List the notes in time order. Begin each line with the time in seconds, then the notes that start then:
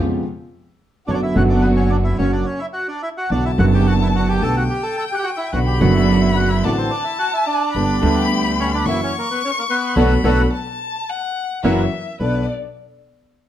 Already playing: B3 C#4
0.00 F2 C#3 F3 G#3 B3 F4
1.07 F#1 F#2 D3 F#3 B3 D4 F#4 C#5 D5
1.14 D4 D5
1.23 E4 E5
1.35 F#1 F#2 D3 F#3 B3 D4 F#4 F#5
1.49 D4 D5
1.61 B3 B4
1.76 C#4 C#5
1.90 D4 D5
2.04 E4 E5
2.18 F#1 F#2 C#3 F#3 A#3 C#4 F#4 C#5
2.32 D4 D5
2.45 C#4 C#5
2.59 E4 E5
2.73 F#4 F#5
2.88 D4 D5
3.03 E4 E5
3.17 F#4 F#5
3.29 B1 B2 D3 F#3 B3 D4 F#4 D5 A5
3.45 E4 E5
3.58 F#1 F#2 D3 F#3 B3 D4 F#4 F#5
3.74 G4 G5
3.87 F#4 F#5
4.02 E4 E5
4.16 F#4 F#5
4.29 G4 G5
4.41 B1 B2 D3 A3 B3 G4 A4 G5 A5
4.57 F#4 F#5
4.70 G4 G5
4.83 A4 A5
4.97 A4 A5
5.11 G4 F#5 G5
5.18 G4 G5
5.23 F#4 F#5
5.37 E4 E5
5.52 B1 B2 D3 F#3 B3 D4 F#4 F#5 B5
5.66 G4 G5
5.80 F#1 F#2 D3 F#3 B3 D4 F#4 F#5
5.84 F#4
5.94 E4 E5
6.09 D4 D5
6.21 E4 E5
6.36 F#4 F#5
6.49 E4 E5
6.63 A1 A2 D3 A3 C4 D4 F#4 D5 A5
6.77 C4 C5
6.91 D4 D5
7.04 E4 E5
7.19 F#4 F#5
7.33 E4 E5
7.47 D4 D5
7.73 G1 G2 D3 G3 B3 D4 G4 B5
8.02 D2 D3 G3 B3 D4 G4
8.60 C#4 C#5
8.74 D4 D5
8.86 F#1 F#2 E3 F#3 A#3 C#4 E4 F#4 E5 C#6
9.03 C#4 C#5
9.19 A#3 A#4
9.31 B3 B4
9.45 C#4 C#5
9.59 A#3 A#4
9.70 B3 B4
9.95 B1 F#3 A3 B3 D4 F#4 A4 B4 B5
10.24 B1 F#3 A3 B3 D4 F#4 A4 B4
10.53 A5
11.09 F#5
11.63 F#1 E3 F#3 A#3 C#4 E4 F#4 A#4 E5
12.19 B1 B3 D4 A4 B4 D5